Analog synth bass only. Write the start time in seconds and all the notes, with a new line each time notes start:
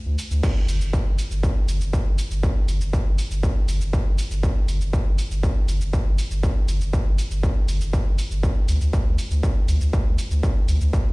0.06 D2
0.31 D2
0.69 G1
0.81 G1
1.06 G1
1.31 G1
1.68 G1
1.81 G1
2.06 G1
2.31 G1
2.68 G1
2.81 G1
3.06 G1
3.31 G1
3.68 G1
3.81 G1
4.06 G1
4.31 G1
4.68 G1
4.81 G1
5.06 G1
5.31 G1
5.68 G1
5.81 G1
6.06 G1
6.31 G1
6.68 G1
6.81 G1
7.06 G1
7.31 G1
7.68 G1
7.81 G1
8.06 G1
8.31 G1
8.68 D2
8.81 D2
9.06 D2
9.31 D2
9.68 D2
9.81 D2
10.06 D2
10.31 D2
10.68 D2
10.81 D2
11.06 D2